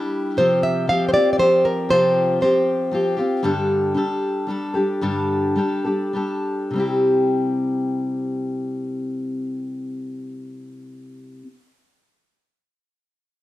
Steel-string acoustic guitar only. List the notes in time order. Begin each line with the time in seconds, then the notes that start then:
Already playing: G3 D4 E4 G4
0.37 C3 F3 C4 F4 G4
0.87 F3 C4 F4 G4
1.13 C4 F4 G4
1.38 F3 C4 F4 G4
1.89 C3 F3 C4 F4 G4
2.41 F3 C4 F4 G4
2.91 F3 C4 F4 G4
3.17 C4 F4 G4
3.43 G2 D3 G3 D4 G4 A4
3.94 G3 D4 G4 A4
4.47 G3 D4 G4 A4
4.74 G3 D4 G4 A4
5.01 G2 D3 G3 D4 G4 A4
5.56 G3 D4 G4 A4
5.84 G3 D4 G4 A4
6.13 G3 D4 G4 A4
6.71 C3 G3
6.76 C4 E4 G4